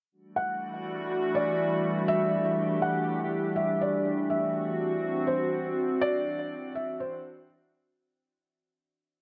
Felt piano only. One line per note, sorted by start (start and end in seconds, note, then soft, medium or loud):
0.36 1.31 F#5 medium
1.35 2.05 D5 medium
2.08 2.78 E5 loud
2.82 3.52 F#5 medium
3.56 3.79 E5 medium
3.81 4.04 D5 medium
4.30 5.24 E5 medium
5.27 5.97 C5 medium
6.01 6.71 D5 loud
6.75 6.99 E5 medium
7.00 7.46 C5 medium